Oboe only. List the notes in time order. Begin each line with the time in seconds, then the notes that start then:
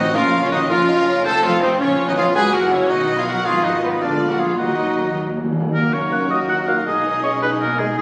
Already playing: F#4
0.15 A#4
0.43 F4
0.52 F#4
0.70 A#4
1.24 C5
1.43 A4
1.62 D#4
1.80 F4
2.09 F#4
2.18 G#4
2.36 B4
2.54 A#4
2.73 E4
2.90 F#4
3.18 G#4
3.27 A#4
3.45 G#4
3.64 F#4
3.83 D#4
4.02 F4
4.30 A#4
4.40 G#4
4.58 F#4
5.74 A#4
5.93 C#5
6.31 D#5
6.49 F#5
6.68 F5
6.87 D#5
7.23 C#5
7.42 B4
7.61 A#4
7.79 G#4
7.98 G#4